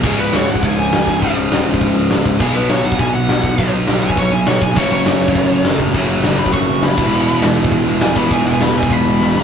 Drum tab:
CC |x---------------|----------------|x---------------|----------------|
HH |----o---o---o---|o---o---o---o---|----o---o---o---|o---o---o---o---|
SD |----o-------o---|----o-------o---|----o-------o---|----o-------o---|
BD |o------oo-----o-|o------oo-----o-|o------oo-----o-|o------oo-----o-|

CC |x---------------|----------------|x---------------|----------------|
HH |----o---o---o---|o---o---o---o---|----o---o---o---|o---o---o-------|
SD |----o-------o---|----o-------o---|----o-------o---|----o-------o-o-|
BD |o------oo-----o-|o------oo-----o-|-------oo-----o-|o------oo-------|